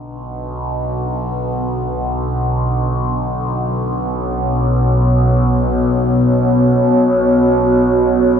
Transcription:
Already playing: synth drone B1 B2, analog synth pad B3 D4 A4 E5
0.39 analog synth pad F#4
4.03 analog synth pad C#5

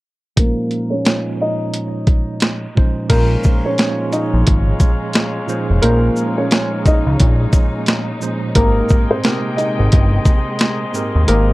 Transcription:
0.36 tine electric piano A#2 F3 G#3 C#4 D#4 C5, upright piano A#3 A#4, kick, closed hi-hat
0.71 closed hi-hat
0.90 upright piano C#4 C#5
1.04 tine electric piano A#2 F3 G#3 C#4 D#4 C#5, snare, closed hi-hat
1.41 upright piano D#4 D#5
1.74 closed hi-hat
2.07 kick, closed hi-hat
2.40 snare, closed hi-hat
2.75 tine electric piano A#2 F3 G#3 C#4 D#4 C5, kick
3.09 analog synth bass A#1, tine electric piano A#2 F3 G#3 C#4 D#4 C5, horn section G#3 F4 C#5, upright piano A#3 A#4, kick, closed hi-hat, crash
3.43 kick, shaker
3.66 upright piano C#4 C#5
3.78 tine electric piano A#2 F3 G#3 C#4 D#4 C#5, snare, closed hi-hat
4.13 upright piano D#4 D#5, closed hi-hat, shaker
4.34 analog synth bass A#1
4.47 analog synth bass G#1, kick, closed hi-hat
4.80 kick, closed hi-hat, shaker
5.13 snare, closed hi-hat
5.47 tine electric piano A#2 F3 G#3 C#4 D#4 C5, shaker
5.70 analog synth bass F1
5.82 analog synth bass A#1, tine electric piano A#2 F3 G#3 C#4 D#4 C5, upright piano A#3 A#4, closed hi-hat
6.16 shaker
6.38 upright piano C#4 C#5
6.50 tine electric piano A#2 F3 G#3 C#4 D#4 C#5, snare, closed hi-hat
6.86 upright piano D#4 D#5, kick, closed hi-hat, shaker
7.07 analog synth bass C#2
7.20 analog synth bass A#1, kick, closed hi-hat
7.53 kick, closed hi-hat, shaker
7.86 snare, closed hi-hat
8.20 tine electric piano A#2 F3 G#3 C#4 D#4 C5, shaker
8.54 analog synth bass G#1, tine electric piano G#2 G#3 C4 G4 A#4, string section G#3 G5, upright piano A#3 A#4, horn section C4 G#4 D#5, kick, closed hi-hat
8.89 kick, shaker
9.11 upright piano C4 C5
9.23 tine electric piano C3 G#3 C4 G4 A#4, snare, closed hi-hat
9.57 upright piano D#4 D#5, closed hi-hat, shaker
9.79 analog synth bass G#1
9.92 analog synth bass G1, kick, closed hi-hat
10.25 kick, closed hi-hat, shaker
10.59 snare, closed hi-hat
10.93 tine electric piano G#2 G#3 C4 G4 A#4, shaker
11.15 analog synth bass D#2
11.27 analog synth bass G#1, tine electric piano G#2 G#3 C4 G4 A#4, upright piano A#3 A#4, string section F4, closed hi-hat

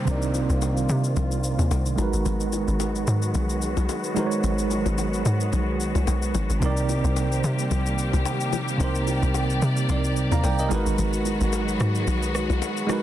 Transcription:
Already playing: string section D#3 G3 A#3 C4, downlifter
0.05 log drum bass C2, tine electric piano C3 C4 D4, string section F4, low conga, shaker
0.10 tine electric piano A#4 D5
0.15 tine electric piano D#4
0.22 shaker
0.34 low bongo, shaker
0.50 log drum bass C2, shaker
0.62 high bongo, shaker
0.77 shaker
0.89 log drum bass C3, shaker
1.04 shaker
1.16 log drum bass C2, low conga, shaker
1.31 shaker
1.44 shaker
1.59 log drum bass D#2, low bongo, shaker
1.71 log drum bass C2, high bongo, shaker
1.86 shaker
1.96 log drum bass G#1, string section F#3 G#3 B3 F#4, tine electric piano G#3 D#4 F#4, low bongo, low conga, shaker
2.01 tine electric piano A#4 B4
2.13 log drum bass G#1, shaker
2.26 log drum bass G#1, low conga, shaker
2.40 shaker
2.53 low bongo, shaker
2.68 log drum bass G#1, shaker
2.80 high bongo, shaker
2.96 shaker
3.07 log drum bass G#2, shaker
3.22 shaker
3.34 log drum bass B1, low conga, shaker
3.50 shaker
3.62 shaker
3.77 log drum bass B1, low bongo, shaker
3.89 high bongo, shaker
4.04 shaker
4.14 tine electric piano G#3 D#4 F#4, low bongo, low conga, shaker
4.19 tine electric piano A#4 C5
4.27 tine electric piano C#5
4.32 shaker
4.44 log drum bass G#1, low conga, shaker
4.59 shaker
4.71 low bongo, shaker
4.86 log drum bass G#1, low bongo, shaker
4.98 high bongo, shaker
5.14 shaker
5.25 log drum bass G#2, high bongo, shaker
5.40 shaker
5.53 log drum bass B1, low conga, shaker
5.80 shaker
5.95 log drum bass C2, low bongo, shaker
6.07 log drum bass B1, high bongo, shaker
6.22 shaker
6.34 log drum bass G#1, low bongo, low conga, shaker
6.50 log drum bass G#1, shaker
6.60 log drum bass C2, tine electric piano C3 C4 D#4, string section G3 A#3 C4 G4, low conga, shaker
6.64 tine electric piano A#4 D5
6.77 shaker
6.89 low bongo, shaker
7.04 log drum bass C2, shaker
7.16 high bongo, shaker
7.32 shaker
7.44 log drum bass C3, shaker
7.59 shaker
7.71 log drum bass C2, low conga, shaker
7.86 shaker
7.99 shaker
8.13 log drum bass C2, low bongo, shaker
8.25 high bongo, shaker
8.41 shaker
8.53 low bongo, low conga, shaker
8.68 shaker
8.78 log drum bass C2, tine electric piano C3 C4 D#4, string section D5, low conga, shaker
8.82 tine electric piano A#4 C5
8.95 shaker
9.07 low bongo, shaker
9.23 log drum bass C2, shaker
9.34 high bongo, shaker
9.50 shaker
9.62 log drum bass C3, shaker
9.77 shaker
9.89 log drum bass C2, tine electric piano C3 C4 D#4 A#4 D5, low conga, shaker
10.04 shaker
10.17 shaker
10.32 log drum bass D#2, tine electric piano F5 A#5, low bongo, shaker
10.44 log drum bass C2, tine electric piano D5 G5, high bongo, shaker
10.59 tine electric piano A#4 D#5, shaker
10.69 log drum bass G#1, string section D#3 F#3 G#3 B3 F#4, tine electric piano G#3 D#4 F#4, low bongo, low conga, shaker
10.73 tine electric piano A#4 B4
10.86 log drum bass G#1, shaker
10.98 log drum bass G#1, low conga, shaker
11.13 shaker
11.25 low bongo, shaker
11.41 log drum bass G#1, shaker
11.53 high bongo, shaker
11.68 shaker
11.80 log drum bass G#2, cross-stick, shaker
11.95 shaker
12.07 log drum bass B1, low conga, shaker
12.23 shaker
12.35 cross-stick, shaker
12.50 log drum bass B1, low bongo, shaker
12.62 high bongo, shaker
12.77 shaker
12.87 tine electric piano G#3 D#4 F#4, cross-stick, low bongo, low conga, shaker
12.91 tine electric piano A#4 B4

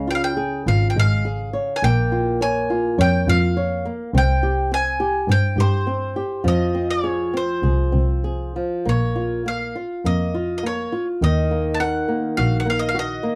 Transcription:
Already playing: double bass C#2, nylon-string guitar C#3
0.07 nylon-string guitar F4, mandolin G5
0.15 mandolin F5
0.24 mandolin G5
0.37 nylon-string guitar G#4
0.66 double bass G#1, nylon-string guitar F4, mandolin F5
0.90 mandolin G5
0.96 double bass G#1, nylon-string guitar G#3, mandolin F5
1.25 nylon-string guitar G#4
1.53 nylon-string guitar C#5
1.76 mandolin G#5
1.82 double bass A#1, nylon-string guitar A#3, mandolin G5
2.12 nylon-string guitar F4
2.41 nylon-string guitar C#5, mandolin G#5
2.70 nylon-string guitar F4
2.98 double bass F2, nylon-string guitar C#5, mandolin G5
3.27 double bass F2, nylon-string guitar F4, mandolin F5
3.57 nylon-string guitar C#5
3.85 nylon-string guitar A#3
4.13 double bass C2, nylon-string guitar C4
4.18 mandolin G5
4.43 nylon-string guitar G4
4.71 nylon-string guitar C4, mandolin G#5
5.00 nylon-string guitar G4
5.27 double bass G2, nylon-string guitar C4
5.32 mandolin G5
5.56 double bass G2, nylon-string guitar G4
5.60 mandolin C5
5.87 nylon-string guitar C4
6.16 nylon-string guitar G4
6.44 double bass F2, nylon-string guitar F3, mandolin D#5
6.75 nylon-string guitar C4
6.90 mandolin C#5
7.04 nylon-string guitar G#4
7.34 nylon-string guitar C4, mandolin C5
7.62 double bass C2, nylon-string guitar G#4
7.92 double bass C2, nylon-string guitar C4
8.24 nylon-string guitar G#4
8.56 nylon-string guitar F3
8.85 double bass A#1, nylon-string guitar A#3, mandolin C#5
9.16 nylon-string guitar F4
9.46 nylon-string guitar A#3, mandolin F5
9.75 nylon-string guitar F4
10.04 double bass F2, nylon-string guitar A#3, mandolin D#5
10.34 nylon-string guitar F4
10.58 mandolin D#5
10.63 nylon-string guitar A#3, mandolin C#5
10.92 nylon-string guitar F4
11.22 double bass D#2, nylon-string guitar D#3, mandolin D#5
11.51 nylon-string guitar A#3
11.74 mandolin A5
11.80 nylon-string guitar A#4, mandolin F#5
12.08 nylon-string guitar A#3
12.37 double bass A#1, nylon-string guitar F#4, mandolin F5
12.60 mandolin F#5
12.65 nylon-string guitar A#3
12.70 mandolin F5
12.79 mandolin D#5
12.89 mandolin F5
12.95 nylon-string guitar F#4
12.99 mandolin D#5
13.23 nylon-string guitar A#3

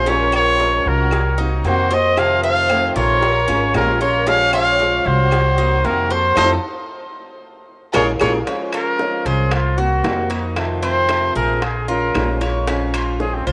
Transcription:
Already playing: upright bass A#1, trumpet C5
0.06 steel-string acoustic guitar F3 G#3 C#4 F4, cuban tres C#4, violin section A#4, trumpet C#5, cowbell, low agogo
0.32 cuban tres F4, violin section A#4, trumpet C#5, low agogo, claves
0.60 steel-string acoustic guitar F3 G#3 C#4 F4, cowbell
0.86 upright bass C2, violin section F#4, trumpet A#4
1.11 muted steel-string acoustic guitar stroke, cowbell, low agogo, claves
1.38 steel-string acoustic guitar A#3 C4 F#4, cuban tres D#4
1.64 upright bass F2, steel-string acoustic guitar C3 D#3 A#3 C4 F#4, violin section F#4, trumpet C5, cowbell, low agogo
1.91 steel-string acoustic guitar A#3 C4 F#4, cuban tres C5, violin section C5, trumpet D#5, cowbell
2.17 steel-string acoustic guitar C3 D#3 A3 C4 F4, violin section C5, trumpet F5, cowbell, low agogo, claves
2.43 cuban tres F4, violin section C5, trumpet F5
2.69 steel-string acoustic guitar C3 D#3 A3 C4 F4, cowbell, low agogo, claves
2.96 upright bass A#1, cuban tres F4, violin section A#4, trumpet C#5, cowbell
3.22 muted steel-string acoustic guitar stroke, cowbell, low agogo
3.48 upright bass G#1, steel-string acoustic guitar G#3 C#4 F4, cuban tres C#4, low agogo
3.74 upright bass A#1, steel-string acoustic guitar F3 G#3 C#4 F4, violin section F4, trumpet A#4, cowbell, low timbale, low agogo, claves
4.01 steel-string acoustic guitar G#3 C#4 F4, cuban tres F4, violin section A#4, trumpet C#5, cowbell
4.27 steel-string acoustic guitar F3 G#3 C#4 F4, cuban tres C#4, violin section C#5, trumpet F5, cowbell, low agogo
4.53 cuban tres F4, violin section C#5, trumpet F5, low agogo, claves
4.79 steel-string acoustic guitar F3 G#3 C#4 F4, cowbell
5.06 upright bass C2, violin section F#4, trumpet C5
5.31 muted steel-string acoustic guitar stroke, cowbell, low agogo, claves
5.58 steel-string acoustic guitar A#3 C4 F#4, cuban tres D#4
5.84 upright bass F2, steel-string acoustic guitar C3 D#3 A#3 C4 F#4, violin section F#4, trumpet A#4, cowbell, low agogo
6.10 steel-string acoustic guitar A#3 C4 F#4, violin section A4, cuban tres C5, trumpet C5, cowbell
6.36 upright bass F2, steel-string acoustic guitar F3 A3 C4, cuban tres D#4 F4 A4, violin section F4 A4 C5, trumpet C5, cowbell, high timbale, claves
7.93 upright bass A#1, steel-string acoustic guitar G#3 A#3 C#4, cuban tres F4 G#4 A#4, violin section G#4 A#4 C#5, trumpet C#5, cowbell, high timbale, claves
8.20 upright bass A#1, steel-string acoustic guitar G#3 A#3 C#4, cuban tres F4 G#4 A#4, violin section G#4 A#4 C#5, trumpet C#5, cowbell, high timbale, claves
8.47 steel-string acoustic guitar F3 G#3 C#4 F4, cuban tres C#4, high bongo, high timbale
8.72 cuban tres F4, trumpet A#4, high timbale, claves
8.99 steel-string acoustic guitar F3 G#3 C#4 F4, high bongo
9.25 upright bass C2, trumpet G#4, cuban tres C5, high timbale
9.51 trumpet F4, muted steel-string acoustic guitar stroke, high bongo, high timbale, claves
9.77 steel-string acoustic guitar A#3 C4 F#4, cuban tres F#4, trumpet F#4
10.03 upright bass F2, steel-string acoustic guitar C3 D#3 A#3 C4 F#4, high bongo, low bongo, high timbale, low timbale
10.29 steel-string acoustic guitar A#3 C4 F#4, cuban tres D#4, high timbale
10.56 steel-string acoustic guitar C3 D#3 A3 C4 F4, high bongo, high timbale, claves
10.83 cuban tres C4, trumpet C5, high bongo, high timbale
11.09 steel-string acoustic guitar C3 D#3 A3 C4 F4, high bongo, high timbale, claves
11.35 upright bass A#1, cuban tres G#4, trumpet A#4
11.62 trumpet G#4, muted steel-string acoustic guitar stroke, high bongo, high timbale
11.88 steel-string acoustic guitar G#3 C#4 F4, cuban tres F4, trumpet A#4, high bongo
12.15 upright bass A#1, steel-string acoustic guitar F3 G#3 C#4 F4, high bongo, low bongo, high timbale, low timbale, claves
12.41 steel-string acoustic guitar G#3 C#4 F4, cuban tres C#5, high bongo, high timbale
12.67 steel-string acoustic guitar F3 G#3 C#4 F4, cuban tres C#4, high bongo, high timbale
12.94 cuban tres F4, high timbale, claves
13.20 steel-string acoustic guitar F3 G#3 C#4 F4, trumpet G#4, high bongo
13.35 trumpet C4
13.47 upright bass C2, trumpet F4, cuban tres C5, high timbale

